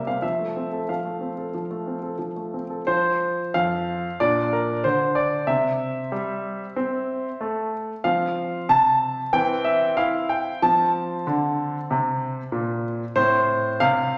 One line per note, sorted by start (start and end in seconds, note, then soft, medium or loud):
0.00 0.21 C3 soft
0.00 0.25 G3 soft
0.00 0.17 A#3 soft
0.00 0.22 E5 medium
0.07 0.23 C4 soft
0.07 0.23 F5 medium
0.22 0.88 F3 soft
0.22 0.89 E5 medium
0.39 0.66 A3 soft
0.56 0.83 C4 soft
0.72 0.99 A4 soft
0.89 1.53 F3 soft
0.89 2.54 F5 medium
1.05 1.32 A3 soft
1.21 1.48 C4 soft
1.38 1.65 A4 soft
1.55 2.17 F3 soft
1.71 1.98 A3 soft
1.87 2.14 C4 soft
2.03 2.30 A4 soft
2.19 2.84 F3 soft
2.36 2.64 A3 soft
2.54 2.80 C4 soft
2.70 2.87 A4 soft
2.87 3.41 F3 medium
2.87 4.15 F4 soft
2.87 3.54 C5 medium
3.54 4.07 F2 medium
3.54 4.19 F5 medium
4.20 4.71 A#2 medium
4.20 5.44 D4 soft
4.20 4.52 D5 medium
4.53 4.84 A#4 medium
4.84 5.35 D3 medium
4.84 5.16 C5 medium
5.15 5.47 D5 medium
5.47 5.99 C3 medium
5.47 6.75 C4 soft
5.47 7.72 E5 medium
6.12 6.63 G3 medium
6.76 7.28 C4 medium
7.41 7.92 A3 medium
8.04 8.56 F3 medium
8.04 9.29 C4 soft
8.04 8.69 F5 medium
8.69 9.20 C3 medium
8.69 9.33 A5 medium
9.33 9.84 E3 medium
9.33 10.57 C4 soft
9.33 9.65 G5 medium
9.65 9.97 E5 medium
9.97 10.49 E4 medium
9.97 10.29 F5 medium
10.29 10.61 G5 medium
10.62 11.13 F3 medium
10.62 13.11 C4 soft
10.62 12.83 A5 medium
11.27 11.77 D3 medium
11.91 12.40 C3 medium
12.52 13.02 A#2 medium
13.16 13.67 A2 medium
13.16 14.18 C4 soft
13.16 13.80 C5 medium
13.80 14.18 C3 medium
13.80 14.18 F5 loud